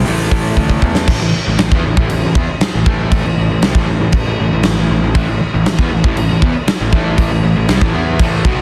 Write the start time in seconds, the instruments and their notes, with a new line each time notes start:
0.06 picked electric bass A1, distorted electric guitar A2 E3 A3, open hi-hat
0.31 picked electric bass A1, kick, open hi-hat
0.57 picked electric bass D2, kick
0.70 kick
0.82 picked electric bass E2, kick
0.95 snare
1.07 picked electric bass A1, distorted electric guitar A2 E3, kick, crash
1.21 picked electric bass A1, distorted electric guitar A2 E3
1.35 muted distorted electric guitar stroke, muted picked electric bass stroke
1.47 picked electric bass A1, distorted electric guitar A2 E3
1.58 picked electric bass A1, distorted electric guitar A2 E3, snare, crash
1.72 picked electric bass E2, distorted electric guitar E3 B3, kick
1.86 picked electric bass A1, distorted electric guitar A2 E3
1.97 picked electric bass A1, distorted electric guitar A2 E3, kick
2.09 picked electric bass A1, distorted electric guitar A2 E3, crash
2.24 picked electric bass A1, distorted electric guitar A2 E3
2.35 picked electric bass E2, distorted electric guitar E3 B3, kick
2.49 muted picked electric bass stroke, muted distorted electric guitar stroke
2.61 muted picked electric bass stroke, muted distorted electric guitar stroke, snare, crash
2.75 picked electric bass A1, distorted electric guitar A2 E3
2.86 picked electric bass A1, distorted electric guitar A2 E3 A3, kick
3.12 kick, crash
3.25 picked electric bass A1, distorted electric guitar A2 E3
3.37 picked electric bass A1, distorted electric guitar A2 E3
3.50 picked electric bass A1, distorted electric guitar A2 E3
3.62 picked electric bass C2, distorted electric guitar C3 G3, snare, crash
3.75 picked electric bass A1, distorted electric guitar A2 E3, kick
3.89 picked electric bass A1, distorted electric guitar A2 E3
4.01 picked electric bass A1, distorted electric guitar A2 E3
4.12 picked electric bass A1, distorted electric guitar A2 E3, kick, crash
4.27 picked electric bass A1, distorted electric guitar A2 E3
4.40 picked electric bass A1, distorted electric guitar A2 E3
4.52 picked electric bass A1, distorted electric guitar A2 E3
4.63 picked electric bass A1, distorted electric guitar A2 E3, snare, crash
4.77 picked electric bass A1, distorted electric guitar A2 E3
4.90 picked electric bass A1, distorted electric guitar A2 E3
5.02 picked electric bass A1, distorted electric guitar A2 E3
5.15 picked electric bass A1, distorted electric guitar A2 E3, kick, crash
5.29 picked electric bass A1, distorted electric guitar A2 E3
5.41 muted overdriven electric guitar stroke, muted picked electric bass stroke, muted distorted electric guitar stroke
5.54 picked electric bass A1, distorted electric guitar A2 E3
5.66 picked electric bass A1, distorted electric guitar A2 E3, snare, crash
5.79 picked electric bass E2, distorted electric guitar E3 B3, kick
5.92 picked electric bass A1, distorted electric guitar A2 E3
6.04 picked electric bass A1, distorted electric guitar A2 E3, kick
6.17 picked electric bass A1, distorted electric guitar A2 E3, crash
6.31 picked electric bass A1, distorted electric guitar A2 E3
6.42 picked electric bass E2, distorted electric guitar E3 B3, kick
6.55 muted overdriven electric guitar stroke, muted distorted electric guitar stroke, muted picked electric bass stroke
6.67 muted overdriven electric guitar stroke, muted picked electric bass stroke, muted distorted electric guitar stroke, snare, crash
6.81 picked electric bass A1, distorted electric guitar A2 E3
6.93 picked electric bass A1, distorted electric guitar A2 E3 A3, kick
7.18 kick, crash
7.31 picked electric bass A1, distorted electric guitar A2 E3
7.44 picked electric bass A1, distorted electric guitar A2 E3
7.56 picked electric bass A1, distorted electric guitar A2 E3
7.68 picked electric bass C2, distorted electric guitar C3 G3, snare, crash
7.81 picked electric bass A1, distorted electric guitar A2 E3, kick
7.94 picked electric bass E2, distorted electric guitar E3 B3 E4
8.19 picked electric bass A1, distorted electric guitar A2 E3 A3, kick, crash
8.44 picked electric bass B1, distorted electric guitar B2 F#3 B3, kick